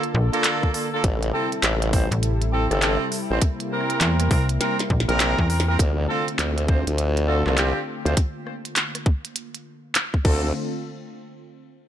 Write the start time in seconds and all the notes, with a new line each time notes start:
Already playing: D3 A#3 F4 A4
0.03 closed hi-hat
0.15 A#1
0.33 A#3 D4 F4 A4, closed hi-hat
0.44 clap, closed hi-hat
0.63 kick
0.74 A#3 D4 F4 A4, open hi-hat
0.93 A#3 D4 F4 A4
1.04 A1 C3 G3 E4, kick, closed hi-hat
1.23 closed hi-hat
1.33 C4 E4 G4 A4
1.52 closed hi-hat
1.63 A1, clap, closed hi-hat
1.82 closed hi-hat
1.93 C4 E4 G4 C5, kick, open hi-hat
2.11 A1, closed hi-hat
2.23 closed hi-hat
2.42 closed hi-hat
2.53 C4 E4 G4 A4
2.71 G1 C4 E4 G4 A4, cross-stick, closed hi-hat
2.82 C4 E4 G4 A4, clap, closed hi-hat
3.12 open hi-hat
3.30 A1 C4 E4 G4 C5
3.41 C3 A#3, kick, closed hi-hat
3.60 closed hi-hat
3.72 C4 E4 G4 A#4
3.81 cross-stick
3.90 closed hi-hat
4.01 E2, clap, closed hi-hat
4.20 cross-stick, closed hi-hat
4.31 C2 C4 E4 G4 A#4, kick, open hi-hat
4.49 closed hi-hat
4.61 C4 E4 G4 A#4, snare, closed hi-hat
4.79 snare, closed hi-hat
4.90 A#1, kick
5.00 snare
5.09 A#1 C4 E4 G4 A#4, closed hi-hat
5.20 snare, clap, closed hi-hat
5.38 E2, kick
5.50 C4 E4 G4 A#4, open hi-hat
5.60 snare
5.68 C4 E4 G4 A#4
5.79 D2 D3 A3 C4 F4, kick, closed hi-hat
6.08 C4 D4 F4 A4
6.28 closed hi-hat
6.39 D2, clap, closed hi-hat
6.58 closed hi-hat
6.68 C4 D4 F4 C5, kick
6.87 D2, closed hi-hat
6.98 closed hi-hat
7.17 closed hi-hat
7.28 C4 D4 F4 A4
7.46 C2 C4 D4 F4 A4, cross-stick, clap
7.57 C4 D4 F4 G4, clap, closed hi-hat
8.05 D2 C4 D4 F4 C5, closed hi-hat
8.17 A#3, kick, closed hi-hat
8.47 cross-stick
8.65 closed hi-hat
8.76 clap, closed hi-hat
8.95 cross-stick, closed hi-hat
9.06 kick
9.25 closed hi-hat
9.36 closed hi-hat
9.55 closed hi-hat
9.95 clap, closed hi-hat
10.14 kick
10.24 D2 D3 A3 C4 D4 F4 A4, kick, crash